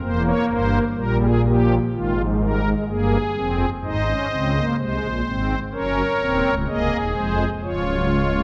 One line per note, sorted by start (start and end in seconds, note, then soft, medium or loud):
0.02 0.32 E1 medium
0.02 0.31 E2 medium
0.02 0.84 A#3 medium
0.02 0.23 C5 medium
0.25 0.46 C#5 medium
0.49 0.79 G1 medium
0.49 0.79 G2 medium
0.49 0.79 C5 medium
0.96 1.79 A#1 medium
0.96 1.79 A#2 medium
0.96 1.26 G3 medium
0.96 1.17 A#4 medium
1.21 1.41 G#4 medium
1.45 1.74 F3 medium
1.45 1.74 G4 medium
1.92 2.74 G#1 medium
1.92 2.74 G#2 medium
1.92 2.13 D#3 medium
1.92 2.22 F4 medium
2.16 2.36 F3 medium
2.40 2.61 G3 medium
2.40 2.70 A#4 medium
2.64 2.84 G#3 medium
2.88 3.17 G1 medium
2.88 3.17 G2 medium
2.88 3.17 A#3 medium
2.88 3.69 G#4 medium
3.36 3.65 F1 medium
3.36 3.65 F2 medium
3.36 3.65 C4 medium
3.83 4.13 G#1 medium
3.83 4.13 G#2 medium
3.83 4.04 D#4 medium
3.83 4.76 C5 medium
3.83 4.65 D#5 medium
4.07 4.27 C#4 medium
4.30 4.60 C#2 medium
4.30 4.60 C#3 medium
4.30 4.51 C4 medium
4.54 4.75 A#3 medium
4.78 4.98 C2 medium
4.78 4.98 C3 medium
4.78 5.07 G#3 medium
4.78 5.60 C5 medium
5.02 5.22 A#1 medium
5.02 5.22 A#2 medium
5.25 5.55 G#1 medium
5.25 5.55 G#2 medium
5.25 5.55 C4 medium
5.72 6.02 F#1 medium
5.72 6.02 F#2 medium
5.72 6.02 C#4 medium
5.72 6.55 A#4 medium
5.72 6.55 C#5 medium
6.20 6.41 D#1 medium
6.20 6.41 D#2 medium
6.20 6.50 C4 medium
6.44 6.64 C#1 medium
6.44 6.65 C#2 medium
6.67 6.88 C1 medium
6.67 6.88 C2 medium
6.67 6.97 A#3 medium
6.67 7.50 G#4 medium
6.67 6.97 D#5 medium
6.92 7.12 D#1 medium
6.92 7.12 D#2 medium
7.15 7.44 F1 medium
7.15 7.45 F2 medium
7.15 7.44 G#3 medium
7.15 7.44 C5 medium
7.63 8.43 C#1 medium
7.63 8.43 C#2 medium
7.63 7.84 F3 medium
7.63 8.43 F4 medium
7.63 8.43 C#5 medium
7.86 8.07 F#3 medium
8.11 8.31 G#3 medium
8.34 8.43 A#3 soft